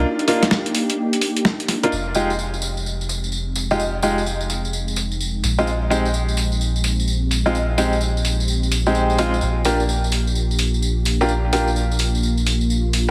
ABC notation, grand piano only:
X:1
M:4/4
L:1/16
Q:"Swing 16ths" 1/4=128
K:Fdor
V:1 name="Grand piano"
z2 [B,DEF] z12 [B,DEF] | z2 [A,EFG] z12 [A,EFG] | z2 [A,EFG] z12 [A,CEF] | z2 [A,CEG] z12 [A,CEF] |
z2 [A,CEG] z8 [A,CEG]3 [A,CEF] z | z2 [B,DFG] z12 [B,DFG] | z2 [B,DFG] z12 z |]